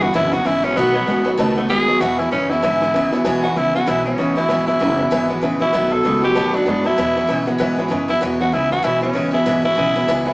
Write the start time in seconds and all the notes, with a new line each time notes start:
Already playing: G1
0.01 E2 B2 E3 G#3 B3 E4 F#4 B4 E5 F#5
0.13 F#1 E2 B2 D3 E3 G#3 B3 E4 B4 E5 B5
0.31 E2 D3 E3 G#3 B3 E4 F#4 B4 E5 G#5
0.44 G#1 E2 C#3 E3 G#3 B3 E4 B4 E5 G#5
0.62 E2 B2 E3 G#3 B3 C#4 E4 B4 E5 G#5
0.76 B1 B2 D#3 F#3 A3 B3 F#4 B4 D#5 F#5
0.94 B2 F#3 B3 F#4 B4 D#5 F#5
0.98 A3
1.06 A1 B2 D#3 G#3 A3 B3 F#4 B4 D#5 G#5
1.24 B2 F#3 A3 B3 F#4 B4 D#5 F#5
1.37 C#2 B2 D#3 A3 B3 F#4 B4 D#5 A5
1.56 B2 A3 B3 F#4 B4 D#5 F#5
1.69 D#2 B2 D#3 G#3 A3 B3 G#4 B4 D#5 F#5
1.73 F#4
1.87 B2 F#3 A3 B3 F#4 B4 D#5 F#5
2.00 E2 B2 E3 G#3 B3 E4 F#4 B4 E5 G#5
2.18 E2 B2 E3 G#3 B3 E4 B4 E5 G#5
2.31 E2 F#2 C#3 E3 G#3 B3 C#4 E4 B4 E5 G#5
2.49 E2 B2 E3 G#3 B3 E4 B4 E5 F#5
2.62 E2 G#2 B2 D3 E3 G#3 B3 E4 B4 E5 G#5
2.81 E2 D3 E3 G#3 B3 E4 B4 E5 G#5
2.94 D#2 E2 C#3 E3 G#3 B3 E4 B4 E5 G#5
3.12 E2 B2 E3 G#3 B3 E4 B4 E5 G#5
3.24 E2 B2 E3 G#3 B3 E4 B4 E5 G#5
3.42 E2 B2 E3 G#3 B3 E4 F#4 B4 E5 G#5
3.56 C#2 E2 C#3 E3 G#3 B3 E4 B4 E5 G#5
3.74 E2 B2 E3 G#3 B3 E4 F#4 B4 E5 G#5
3.86 B1 E2 B2 E3 G#3 B3 E4 B4 E5 F#5
4.04 E2 B2 E3 G#3 B3 C#4 E4 B4 E5 G#5
4.18 A1 E2 C#3 E3 G#3 B3 E4 B4 E5 B5
4.35 E2 B2 E3 G#3 B3 E4 B4 E5 G#5
4.49 G#1 E2 B2 E3 G#3 B3 E4 B4 E5 G#5
4.67 E2 B2 E3 G#3 B3 E4 B4 E5 G#5
4.80 F#1 E2 C#3 E3 G#3 B3 E4 B4 E5 G#5
4.98 E2 B2 E3 G#3 B3 E4 B4 E5 F#5
5.11 G#1 E2 B2 E3 G#3 B3 E4 B4 E5 G#5
5.28 E2 B2 E3 G#3 B3 E4 B4 E5 F#5
5.41 A#1 E2 C#3 E3 G#3 B3 E4 B4 E5 G#5
5.59 E2 B2 E3 G#3 B3 E4 B4 E5 F#5
5.73 B1 B2 D#3 F#3 A3 B3 F#4 B4 D#5 F#5
5.91 B2 F#3 A3 B3 F#4 A4 B4 D#5 A5
6.03 C#2 B2 D#3 G#3 A3 B3 F#4 B4 D#5 F#5
6.22 B2 F#3 A3 B3 F#4 G4 B4 D#5 G#5
6.35 D#2 B2 D#3 F#3 A3 B3 F#4 B4 D#5 A5
6.53 B2 F#3 A3 B3 D4 F#4 B4 D#5 F#5, muted upright bass stroke
6.66 F#2 B2 D#3 G#3 A3 B3 F#4 B4 D#5 F#5
6.84 B2 F#3 A3 B3 E4 F#4 B4 D#5 A5
6.96 E2 B2 E3 G#3 B3 E4 B4 E5 G#5
7.15 E2 B2 E3 G#3 B3 E4 B4 E5 G#5
7.27 E2 B2 C#3 E3 G#3 B3 E4 B4 E5 G#5
7.46 E2 B2 E3 G#3 B3 E4 B4 E5 F#5
7.58 E2 G#2 B2 E3 G#3 B3 E4 B4 E5 F#5
7.76 E2 B2 E3 G#3 B3 E4 B4 E5 G#5
7.88 E2 F#2 C#3 E3 G#3 B3 E4 B4 E5 G#5
8.08 E2 B2 E3 G#3 B3 E4 B4 E5 G#5
8.21 E2 B2 E3 G#3 B3 E4 B4 E5 F#5
8.40 E2 B2 E3 G#3 B3 E4 F#4 B4 E5 F#5
8.52 C#2 E2 C#3 E3 G#3 B3 E4 B4 E5 G#5
8.71 E2 B2 E3 G#3 B3 E4 F#4 B4 E5 B5
8.83 B1 E2 B2 E3 G#3 B3 E4 B4 E5 G#5
9.01 E2 B2 E3 G#3 B3 C#4 E4 B4 E5 G#5
9.13 A1 E2 C#3 E3 G#3 B3 E4 B4 E5 G#5
9.31 E2 B2 E3 G#3 B3 E4 B4 E5 G#5
9.45 G#1 E2 B2 E3 G#3 B3 E4 B4 E5 G#5
9.62 E2 B2 E3 G#3 B3 E4 B4 E5 G#5
9.75 B1 E2 C#3 E3 G#3 B3 E4 B4 E5 G#5
9.94 E2 B2 E3 G#3 B3 E4 B4 E5 G#5
10.08 C#2 E2 B2 E3 G#3 B3 E4 B4 E5 G#5
10.25 E2 B2 E3 G#3 B3 E4 B4 E5 G#5